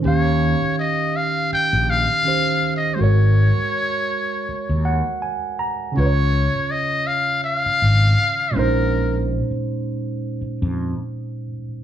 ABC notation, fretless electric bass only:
X:1
M:4/4
L:1/16
Q:"Swing 16ths" 1/4=81
K:Db
V:1 name="Fretless electric bass" clef=bass
E,,3 z6 B,,,2 z4 z | A,,,3 z6 E,,2 z4 z | D,,3 z6 z A,,,2 z2 B,,,2- | B,,,3 z6 F,,2 z4 z |]